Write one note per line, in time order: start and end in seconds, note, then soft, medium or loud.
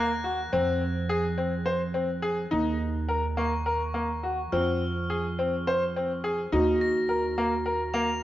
0.00 0.48 D#2 medium
0.00 0.77 F#6 medium
0.00 0.77 A#6 medium
0.24 0.38 F#4 medium
0.53 2.48 F2 medium
0.53 0.81 C4 loud
1.09 1.24 G#4 medium
1.38 1.52 C4 medium
1.65 1.80 C5 medium
1.94 2.08 C4 medium
2.22 2.37 G#4 medium
2.51 4.49 D#2 medium
2.51 2.80 D#4 medium
3.09 3.23 A#4 medium
3.37 3.52 A#3 medium
3.37 4.38 C#6 medium
3.66 3.80 A#4 medium
3.94 4.09 A#3 medium
4.23 4.38 F#4 medium
4.52 6.49 F2 medium
4.52 4.82 C4 medium
4.52 6.59 F4 medium
4.52 5.53 F6 medium
5.10 5.24 G#4 medium
5.39 5.53 C4 medium
5.67 5.82 C5 medium
5.96 6.11 C4 medium
6.24 6.38 G#4 medium
6.53 8.23 D#2 medium
6.53 6.81 D#4 loud
6.53 8.23 F#4 loud
6.81 7.80 A#6 medium
7.09 7.23 A#4 medium
7.38 7.52 A#3 medium
7.66 7.80 A#4 medium
7.94 8.08 A#3 medium
7.94 8.23 F7 medium